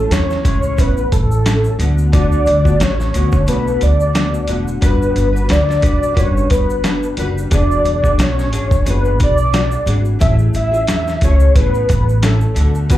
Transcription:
Already playing: G#3 C#4 E4 A4
0.10 E2 C#5, snare, closed hi-hat, shaker
0.30 snare, shaker
0.43 C#2 A2 G#3 C#4 E4, kick, closed hi-hat, shaker
0.47 C#5
0.63 shaker
0.76 A1 A2 C#4 E4, kick, closed hi-hat, shaker
0.80 B4
0.97 shaker
1.12 A1 A4, kick, closed hi-hat, shaker
1.31 shaker
1.44 A2 C#4 E4, snare, closed hi-hat, shaker
1.64 shaker
1.79 D2 D3 A3 B3 F#4, closed hi-hat, shaker
1.98 shaker
2.12 D3 A3 B3 F#4 D5, kick, closed hi-hat, shaker
2.32 shaker
2.46 D2, closed hi-hat, shaker
2.64 A3 B3 F#4, kick, shaker
2.80 A1 C#5, snare, closed hi-hat, shaker
3.00 snare, shaker
3.13 D2 D3 A3 B3 F#4, closed hi-hat, shaker
3.32 kick, shaker
3.46 B1 D3 A3 B3 F#4 B4, closed hi-hat, shaker
3.67 shaker
3.81 D2 D5, closed hi-hat, shaker
4.00 shaker
4.13 D3 A3 B3 F#4, snare, closed hi-hat, shaker
4.34 shaker
4.47 E1 D3 A3 B3 F#4, closed hi-hat, shaker
4.68 shaker
4.81 G1 G3 D4 F#4 B4, kick, closed hi-hat, shaker
4.86 B4
5.02 shaker
5.16 G1, closed hi-hat, shaker
5.33 D4 F#4 B4, shaker
5.49 D2 D5, snare, closed hi-hat, shaker
5.69 snare, shaker
5.80 B1 G3 D4 F#4 B4, kick, closed hi-hat
5.85 D5, shaker
6.03 shaker
6.14 G1 G3 D4 F#4 B4, kick, closed hi-hat
6.19 C#5, shaker
6.37 shaker
6.50 G1 B4, kick, closed hi-hat, shaker
6.70 shaker
6.83 G3 D4 F#4 B4, snare, closed hi-hat, shaker
7.03 shaker
7.17 F#1 G3 D4 F#4 B4, closed hi-hat, shaker
7.38 shaker
7.50 E1 E3 D4 F#4 G#4 D5, kick, closed hi-hat, shaker
7.71 shaker
7.85 E1, closed hi-hat, shaker
8.02 D4 F#4 G#4, kick, shaker
8.18 B1, snare, closed hi-hat, shaker
8.22 C#5
8.39 snare, shaker
8.51 G#1 E3 D4 F#4 G#4, closed hi-hat, shaker
8.71 kick, shaker
8.85 F#1 E3 D4 F#4 G#4, closed hi-hat, shaker
8.90 B4
9.05 shaker
9.20 B1 D5, kick, closed hi-hat, shaker
9.38 shaker
9.51 E3 D4 F#4 G#4, snare, closed hi-hat, shaker
9.72 shaker
9.86 G#1 E3 D4 F#4 G#4, closed hi-hat, shaker
10.05 shaker
10.19 A1 A3 C#4 E4 G#4 E5, kick, closed hi-hat, shaker
10.39 shaker
10.54 A1 E5, closed hi-hat, shaker
10.71 C#4 E4 G#4, shaker
10.87 E2, snare, closed hi-hat, shaker
11.08 snare, shaker
11.21 C#2 A3 C#4 E4 G#4 C#5, kick, closed hi-hat, shaker
11.40 shaker
11.55 A1 A3 C#4 E4 G#4 B4, kick, closed hi-hat, shaker
11.74 shaker
11.89 A1, kick, closed hi-hat, shaker
12.09 shaker
12.22 A3 C#4 E4 A4, snare, closed hi-hat, shaker
12.41 shaker
12.55 D2 D3 A3 B3 F#4, closed hi-hat, shaker
12.75 shaker
12.89 D3 A3 B3 F#4 B4, kick, closed hi-hat, shaker

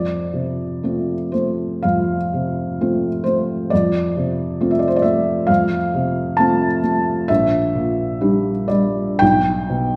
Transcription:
Already playing: F2 D5
0.34 C3
0.83 A3 C4 F4
1.32 A3 C5
1.83 F2 F5
2.34 C3
2.81 A3 C4 F4
3.24 A3 C5
3.70 F2 D5
4.17 C3
4.61 A3 C4 F4
4.71 E5
4.79 D5
4.88 C5
4.96 D5
5.02 A3 E5
5.47 F2 F5
5.95 C3
6.37 A3 C4 F4 A5
6.84 A3
7.28 A#1 E5
7.75 A#2
8.21 G3 D4 G4
8.68 G3 D5
9.19 B1 G5
9.70 B2

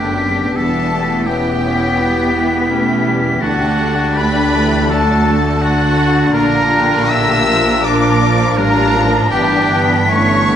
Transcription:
Already playing: F#1 F#2 D3 A3 B3 D4 G4 G5 B6
0.19 C#4 G4
0.55 E1 E2 E3 G3 B3 E4 G4 A4 A5 B6
0.93 A3
1.27 B3 C#4 G4 G5 B6
1.64 C#4
1.99 G3 B3
2.35 E3
2.70 A3 C#4 G4
3.06 G3
3.41 D2 D3 A3 D4 F#4 F#5 A6
4.17 D3 A3 B4 B5
4.54 E3
4.89 F#3 D4 F#4 A4 A5 A6
5.27 D3
5.62 D4 F#4 F#5 A6
6.34 A#1 A#2 D4 F4 A#4 A#5 A#6
6.71 G4
7.10 D3 E5 E6
7.48 F3
7.84 F3 D4 F4 D5 D6 A#6
8.22 F3
8.57 A1 A2 G3 D4 F4 A#4 A#5 A#6
8.95 F3
9.31 G1 G2 D3 E3 B3 D4 G4 G5 B6
9.71 B3
10.09 A3 C#4 E4 C#5 C#6
10.47 B3

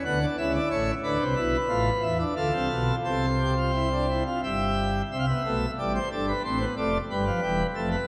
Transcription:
0.05 D2 D3 B3 F#5
0.22 D4
0.38 C#2 C#3 E4 E5
0.54 D5
0.71 A1 A2 C#5
1.03 D2 D3 D4 B4
1.20 C2 C3
1.36 B1 B2 E4
1.69 A1 A2 F4
2.03 E2 E3 E4
2.19 D4
2.36 D2 D3 F4 A4
2.53 C2 C3
2.70 B1 B2
3.04 C2 C3 A4 C5
3.39 G4
3.57 F4
3.74 E4
3.92 D4
4.09 E4
4.26 F4
4.44 G1 G2 G4 E5
5.12 C2 C3 C4 E5
5.19 F5
5.26 B3 E5
5.45 B1 B2 A3
5.78 A1 A2 G3 D5
5.95 C5
6.12 G1 G2 D4 A4
6.28 B4
6.45 A1 A2 C4 C5
6.61 B3
6.77 F1 F2 A3 D5
7.10 G1 G2 G3 B4
7.26 F3
7.43 E1 E2 G3
7.75 F1 F2 A3 A4
7.91 B4

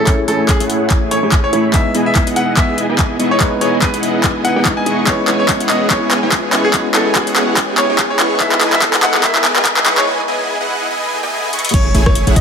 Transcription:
Already playing: A3 C#4 E4 G#4 A4 C#5, riser
0.05 A1 A3 C#4 E4 G#4 C#5 G#5, kick, clap, closed hi-hat
0.09 C#5
0.28 A1 A3 E4 G#4 A4 C#5 G#5, closed hi-hat
0.49 G#4, kick, clap, closed hi-hat
0.60 A1 A3 E4 G#4 C#5 F#5, closed hi-hat
0.70 closed hi-hat
0.90 A1 A3 E4 G#4 C#5 G#5, kick, clap, closed hi-hat
1.11 C#5, closed hi-hat
1.23 A1 A3 E4 G#4 C#5 G#5
1.32 kick, clap, closed hi-hat
1.44 C#5
1.52 A2 A3 C#4 E4 G#4 C#5 B5, closed hi-hat
1.72 G#3 B3 D#4 E4 G#4 E5 G#5, kick, clap, closed hi-hat
1.76 B4
1.95 E1 B3 E4 G#4 D#5 G#5, closed hi-hat
2.06 E5
2.15 kick, clap, closed hi-hat
2.27 E1 B3 E4 G#4 D#5 F#5, closed hi-hat
2.36 F#5, closed hi-hat
2.57 E1 B3 E5, kick, clap, closed hi-hat
2.78 closed hi-hat
2.90 E1 B3 E4 G#4 D#5 G#5
2.99 kick, clap, closed hi-hat
3.19 E1 G#3 B3 D#4 E4 G#4 B4 D#5 C#6, closed hi-hat
3.31 C#5
3.38 E1 G#3 B3 D#4 E4 G#4 G#5, kick, clap, closed hi-hat
3.42 B4
3.61 E1 B3 E4 G#4 C#5 D#5 G#5, closed hi-hat
3.82 B4, kick, clap, closed hi-hat
3.94 E1 B3 E4 G#4 D#5 F#5, closed hi-hat
4.03 closed hi-hat
4.24 E1, kick, clap, closed hi-hat
4.43 G#3 B3 D#4 E4 F#5, closed hi-hat
4.47 B4
4.56 E2 B3 E4 G#4 D#5 G#5
4.65 kick, clap, closed hi-hat
4.77 G#5
4.86 E2 B3 E4 G#4 D#5 C#6, closed hi-hat
5.05 E1 G#3 B3 C#4 E4 G#4 C#5, kick, clap, closed hi-hat
5.09 B4
5.28 E1 B3 E4 G#4 C#5 G#5, clap, closed hi-hat
5.40 C#5
5.49 kick, clap, closed hi-hat
5.60 E1 B3 E4 G#4 C#5 F#5, closed hi-hat
5.70 D#5, clap, closed hi-hat
5.90 E1 E4 C#5, kick, clap, closed hi-hat
6.11 clap, closed hi-hat
6.23 E1 B3 E4 G#4 C#5 G#5
6.32 kick, clap, closed hi-hat
6.52 E1 G#3 B3 C#4 E4 G#4 B4 C#5 C#6, clap, closed hi-hat
6.64 G#4
6.72 E1 G#3 B3 C#4 E4, kick, clap, closed hi-hat
6.76 B4
6.95 E1 B3 E4 G#4 A4 C#5 G#5, clap, closed hi-hat
7.15 G#4, kick, clap, closed hi-hat
7.27 E1 B3 E4 G#4 C#5 F#5, closed hi-hat
7.36 clap, closed hi-hat
7.57 E1 B3 E4 G#4 C#5 G#5, kick, clap, closed hi-hat
7.78 C#5, clap, closed hi-hat
7.89 E1 B3 E4 G#4 C#5 G#5
7.99 kick, clap, closed hi-hat
8.10 C#5
8.19 E1 G#3 B3 C#4 E4 G#4 B4 C#5 C#6, clap, closed hi-hat
8.38 E1 G#3 B3 D#4 E4 G#4 D#5 E5 G#5, kick, clap, closed hi-hat
8.42 B4
8.52 clap
8.61 E1 B3 E4 G#4 D#5 G#5, clap, closed hi-hat
8.73 E5, clap
8.82 kick, clap, closed hi-hat
8.94 E1 B3 E4 G#4 D#5 F#5, clap, closed hi-hat
9.03 F#5, clap, closed hi-hat
9.14 clap
9.24 E1 B3 E4 D#5 E5, kick, clap, closed hi-hat
9.35 clap
9.45 clap, closed hi-hat
9.56 E1 B3 E4 G#4 D#5 G#5, clap
9.65 kick, clap, closed hi-hat
9.77 clap
9.85 E1 G#3 B3 D#4 E4 G#4 B4 D#5 C#6, clap, closed hi-hat
9.98 C#5, clap
10.07 B3 E4 G#4 D#5 G#5
10.28 B3 E4 G#4 D#5 G#5
10.60 B3 E4 G#4 D#5 F#5
10.91 B3 E4 G#4 D#5 G#5, swell
11.23 B3 E4 G#4 D#5 G#5
11.53 B3 E4 G#4 D#5 C#6, closed hi-hat
11.59 closed hi-hat
11.65 closed hi-hat
11.69 closed hi-hat
11.74 A1 A3 E4 G#4 C#5 G#5, kick, closed hi-hat, crash, impact
11.95 A1 A3 E4 G#4 C#5 G#5, closed hi-hat
12.06 C#5, kick, cross-stick
12.15 closed hi-hat
12.27 A1 A3 E4 G#4 C#5 F#5, closed hi-hat
12.36 D#5, kick, closed hi-hat

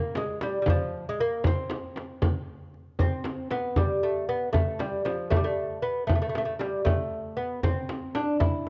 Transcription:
Already playing: A#3
0.15 G#3, tombak tek, frame drum
0.41 G3, tombak tek, frame drum
0.62 G3
0.66 F3, frame drum, tombak dum
1.09 G#3
1.18 A#3, tombak ka
1.44 C4, frame drum, tombak dum
1.70 tombak tek, frame drum
1.96 tombak tek, frame drum
2.22 frame drum, tombak dum
2.74 tombak ka
2.99 C4, frame drum, tombak dum
3.24 tombak tek, frame drum
3.51 B3, tombak tek, frame drum
3.76 G3, tombak dum, frame drum
4.03 A3
4.28 B3, tombak ka
4.53 A3, tombak dum, frame drum
4.79 G3, tombak tek, frame drum
5.05 F3, tombak tek, frame drum
5.30 A3, frame drum, tombak dum
5.36 G3
5.44 A3
5.82 B3, tombak ka
6.07 A3, frame drum, tombak dum
6.15 A3
6.22 A3
6.29 A3
6.35 A3, tombak tek, frame drum
6.45 A3
6.59 G3, tombak tek, frame drum
6.85 A3, tombak dum, frame drum
7.37 B3, tombak ka
7.63 C4, tombak dum, frame drum
7.89 tombak tek, frame drum
8.15 D4, tombak tek, frame drum
8.40 E4, frame drum, tombak dum

